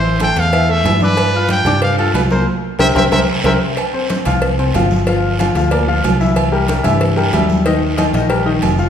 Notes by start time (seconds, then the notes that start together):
Already playing: A1 E3 E4 C5 E5
0.03 high conga
0.20 A3 A4 G5 A5, cowbell, high conga, low timbale, low agogo, short guiro
0.36 E2 F5, cowbell, high conga, short guiro
0.52 E3 E4 E5, cowbell, high conga, low agogo, long guiro
0.68 A3 A4 E5 A5, high conga
0.84 G2 E3 E4 E5, cowbell, high conga, low timbale, low agogo, short guiro
1.00 D4 B4 D5 D6, high conga, short guiro
1.17 cowbell, low agogo, long guiro
1.34 F4 F5 F6, high conga
1.49 G5, cowbell, high conga, low timbale, low agogo, short guiro
1.65 G2 D4 D5 D6, cowbell, high conga, low conga, low agogo, short guiro
1.81 F5, cowbell, high conga, long guiro
1.98 F4 A4 F5 F6, high conga, low agogo
2.14 C2 B4, cowbell, high conga, low timbale, low agogo, short guiro
2.30 A#3 A#4 C5 A#5, high conga, short guiro
2.79 C2 G4 A#4 C5 E5, cowbell, high conga, high timbale, long guiro
2.95 C2 G4 A#4 C5 E5, cowbell, high conga, high timbale, long guiro
3.12 C2 G4 A#4 C5 E5, cowbell, high conga, high timbale, long guiro
3.44 C2 G4 A#4 C5 E5, cowbell, high conga, high timbale, long guiro
3.77 cowbell, high conga, low agogo, long guiro
3.94 C4 C5, high conga
4.09 C4 C5, cowbell, high conga, low timbale, low agogo, short guiro
4.25 C2 F3 F4 F5, cowbell, high conga, low conga, low agogo, short guiro
4.42 cowbell, high conga, long guiro
4.59 C4 C5, high conga, low agogo
4.74 G1 F3 F4 F5, cowbell, high conga, low timbale, low agogo, short guiro
4.90 high conga, short guiro
5.07 F3 F4 F5, cowbell, high conga, low agogo, long guiro
5.26 high conga
5.39 F3 F4 F5, cowbell, high conga, low timbale, low agogo, short guiro
5.55 D2 F3 F4 F5, cowbell, high conga, short guiro
5.71 A#3 A#4 D5, cowbell, high conga, low agogo, long guiro
5.88 F3 F4 F5, high conga
6.04 C2, cowbell, high conga, low timbale, low agogo, short guiro
6.20 E3 E4 E5, high conga, short guiro
6.36 cowbell, high conga, low agogo, long guiro
6.52 G3 G4 A#4, high conga
6.68 G3 G4 A#4, cowbell, high conga, low timbale, low agogo, short guiro
6.83 G2 E3 E4 E5, cowbell, high conga, low conga, low agogo, short guiro
7.01 cowbell, high conga, long guiro
7.16 G3 G4 A#4, high conga, low agogo
7.33 D#2 G3 E4 E5, cowbell, high conga, low timbale, low agogo, short guiro
7.49 high conga, short guiro
7.66 D#3 D#4 D#5, cowbell, high conga, low agogo, long guiro
7.82 high conga
7.97 D#3 D#4 D#5, cowbell, high conga, low timbale, low agogo, short guiro
8.13 A#1 D#3 D#4 D#5, cowbell, high conga, short guiro
8.29 G3 G4 A#4, cowbell, high conga, low agogo, long guiro
8.46 D#3 D#4 D#5, high conga
8.62 F1, cowbell, high conga, low timbale, low agogo, short guiro
8.78 F3 F4 F5, high conga, short guiro